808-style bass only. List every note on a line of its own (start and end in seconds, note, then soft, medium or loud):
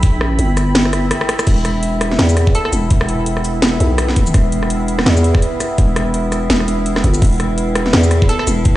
0.00 0.17 B1 medium
0.17 0.38 A#1 medium
0.39 1.11 G1 medium
1.47 2.18 E1 loud
2.19 2.53 E2 loud
2.73 3.79 E1 loud
3.80 4.33 B1 loud
4.34 5.05 E1 loud
5.06 5.41 E2 loud
5.78 6.49 E1 loud
6.50 7.03 E1 loud
7.04 7.21 G1 loud
7.22 7.93 E1 loud
7.94 8.28 E2 loud
8.47 8.77 E1 medium